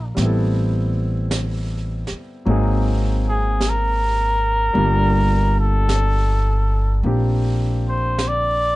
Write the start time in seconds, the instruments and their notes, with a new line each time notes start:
Already playing: upright bass A#1, grand piano F3 A#3 D4 D#4 F4 A#4 G5
0.15 upright bass A1, grand piano G3 B3, brush sweep, snare
0.20 grand piano C4 E4
0.25 grand piano A4
1.31 brush sweep, snare, hi-hat pedal
2.07 muted upright bass stroke, snare
2.45 upright bass G#1, grand piano F#3 A#3 C4 D#4, brush sweep
2.50 grand piano G#4
3.29 muted trumpet G#4
3.61 brush sweep, snare, hi-hat pedal
3.69 muted trumpet A#4
4.73 upright bass G1, grand piano G3 A#3 D4 F4, brush sweep
5.60 muted trumpet A4
5.89 brush sweep, snare, hi-hat pedal
7.03 upright bass A#1, grand piano A#3 C4 D4 G4, brush sweep
7.88 muted trumpet C5
8.18 brush sweep, snare, hi-hat pedal
8.28 muted trumpet D5